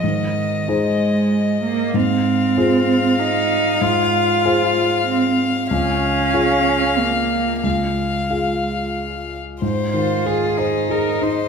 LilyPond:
<<
  \new Staff \with { instrumentName = "Violin" } { \time 3/4 \key aes \major \tempo 4 = 95 ees''2. | f''2.~ | f''2. | f''2. |
f''2~ f''8 r8 | c''4 aes'4 bes'8 c''8 | }
  \new Staff \with { instrumentName = "Grand piano" } { \time 3/4 \key aes \major aes,4 <ees' aes' c''>2 | aes,4 <f' aes' c''>2 | aes,4 <f' aes' c''>2 | des,4 <f' aes' f''>2 |
des,4 <f' aes' f''>2 | aes,8 ees8 aes'8 c''8 aes'8 ees'8 | }
  \new Staff \with { instrumentName = "Cello" } { \time 3/4 \key aes \major ees4 aes4. bes8 | c'2 ees'4 | f'2 c'8 r8 | des'2 bes4 |
aes2 r4 | r8 f'4 ees'4. | }
>>